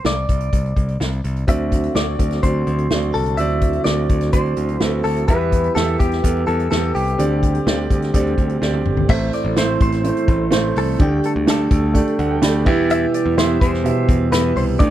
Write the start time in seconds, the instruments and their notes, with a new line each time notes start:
0.05 picked electric bass C2, clean electric guitar D5, snare
0.29 picked electric bass C2, kick, closed hi-hat
0.40 closed hi-hat
0.53 picked electric bass C2, kick, closed hi-hat
0.66 closed hi-hat
0.76 picked electric bass C2, kick, closed hi-hat
0.88 closed hi-hat
1.00 picked electric bass C2, snare
1.12 closed hi-hat
1.24 picked electric bass C2, closed hi-hat
1.36 closed hi-hat
1.47 picked electric bass D2, tonewheel organ D3 F#3 A3 C4 F#4, grand piano D3 C4 F#4 D5, clean electric guitar E5, kick, closed hi-hat
1.72 kick, closed hi-hat
1.83 closed hi-hat
1.95 picked electric bass D2, grand piano C4 F#4 D5, clean electric guitar D5, snare
2.19 picked electric bass D2, kick, closed hi-hat
2.31 snare, closed hi-hat
2.43 picked electric bass D2, grand piano C4 F#4 D5, clean electric guitar C5, kick, closed hi-hat
2.67 picked electric bass D2, closed hi-hat
2.78 closed hi-hat
2.90 picked electric bass D2, grand piano C4 F#4 D5, snare
3.02 closed hi-hat
3.14 picked electric bass C2, clean electric guitar A4, open hi-hat
3.26 closed hi-hat
3.37 picked electric bass D2, grand piano D3 C4 F#4 D5, tonewheel organ E4, clean electric guitar E5, closed hi-hat
3.50 closed hi-hat
3.61 kick, closed hi-hat
3.73 closed hi-hat
3.84 picked electric bass D2, grand piano C4 F#4 D5, clean electric guitar D5, snare
4.09 picked electric bass D2, kick, closed hi-hat
4.21 snare, closed hi-hat
4.33 picked electric bass D2, grand piano C4 F#4 D5, clean electric guitar C5, kick, closed hi-hat
4.46 closed hi-hat
4.56 picked electric bass D2, closed hi-hat
4.69 closed hi-hat
4.80 picked electric bass D2, grand piano C4 F#4 A4, clean electric guitar B4, snare
5.04 picked electric bass D2, clean electric guitar A4, open hi-hat
5.16 closed hi-hat
5.28 picked electric bass E2, grand piano E3 B3 G4 E5, tonewheel organ G3 B3, clean electric guitar B4, kick, closed hi-hat
5.41 closed hi-hat
5.52 kick, closed hi-hat
5.64 closed hi-hat
5.75 picked electric bass E2, grand piano B3 G4 E5, clean electric guitar A4, snare
5.88 closed hi-hat
5.99 picked electric bass E2, clean electric guitar G4, kick, closed hi-hat
6.12 snare, closed hi-hat
6.23 picked electric bass E2, grand piano B3 G4 A4, kick, closed hi-hat
6.36 closed hi-hat
6.47 picked electric bass E2, clean electric guitar A4, closed hi-hat
6.59 closed hi-hat
6.70 picked electric bass E2, grand piano B3 G4 A4, clean electric guitar A4, snare
6.84 closed hi-hat
6.95 picked electric bass C2, clean electric guitar G4, open hi-hat
7.07 closed hi-hat
7.18 picked electric bass D2, grand piano D3 C4 G4 D5, tonewheel organ D3 A3 C4 G4, closed hi-hat
7.43 kick, closed hi-hat
7.55 closed hi-hat
7.66 picked electric bass D2, grand piano C4 G4 D5, snare
7.90 picked electric bass D2, kick, closed hi-hat
8.02 snare, closed hi-hat
8.13 picked electric bass D2, grand piano C4 G4 D5, kick, closed hi-hat
8.27 closed hi-hat
8.38 picked electric bass D2, kick, closed hi-hat
8.50 closed hi-hat
8.61 picked electric bass D2, grand piano C4 G4 D5, snare
8.74 high tom
8.85 picked electric bass G1, mid tom
8.97 floor tom
9.09 picked electric bass A1, grand piano A2 A3 C4 E4 C5, tonewheel organ E3 A3 C4, clean electric guitar E5, kick, crash
9.33 clean electric guitar D5, closed hi-hat
9.45 picked electric bass A1
9.56 picked electric bass A1, grand piano A3 C4 E4 C5, clean electric guitar C5, snare, closed hi-hat
9.81 picked electric bass A1, clean electric guitar C5, kick, closed hi-hat
9.92 snare, closed hi-hat
10.04 grand piano A3 C4 E4 C5, closed hi-hat
10.17 closed hi-hat
10.28 picked electric bass A1, kick, closed hi-hat
10.51 picked electric bass A1, grand piano A3 C4 E4 C5, snare, closed hi-hat
10.76 picked electric bass C2, clean electric guitar A4, open hi-hat
10.99 picked electric bass D2, grand piano D3 A3 D4 G4 D5, tonewheel organ D3 G3, clean electric guitar G4, kick, closed hi-hat
11.24 clean electric guitar A4, closed hi-hat
11.36 picked electric bass D2
11.46 picked electric bass D2, grand piano A3 D4 G4 D5, clean electric guitar A4, snare, closed hi-hat
11.71 picked electric bass D2, kick, closed hi-hat
11.94 grand piano A3 D4 G4 D5, kick, closed hi-hat
12.08 closed hi-hat
12.19 picked electric bass D2, grand piano F#5, closed hi-hat
12.31 grand piano G5
12.41 picked electric bass D2, grand piano A3 D4 G4 D5 B5, snare, closed hi-hat
12.65 picked electric bass E2, tonewheel organ B2 E3, grand piano E3 B3 E4 G4 E5, kick, crash
12.90 clean electric guitar E5, closed hi-hat
13.14 clean electric guitar D5, closed hi-hat
13.26 picked electric bass E2
13.36 picked electric bass E2, grand piano B3 E4 G4 E5, clean electric guitar C5, snare, closed hi-hat
13.61 picked electric bass E2, clean electric guitar C5, kick, closed hi-hat
13.73 snare
13.84 grand piano B2 E4 G4 E5, closed hi-hat
14.09 picked electric bass E2, kick, closed hi-hat
14.31 picked electric bass E2, grand piano B3 E4 G4 E5, clean electric guitar B4, snare, closed hi-hat
14.56 picked electric bass C2, clean electric guitar C5, open hi-hat
14.79 picked electric bass D2, grand piano D3 A3 D4 G4 D5, tonewheel organ D3 G3 A3, clean electric guitar D5, kick, closed hi-hat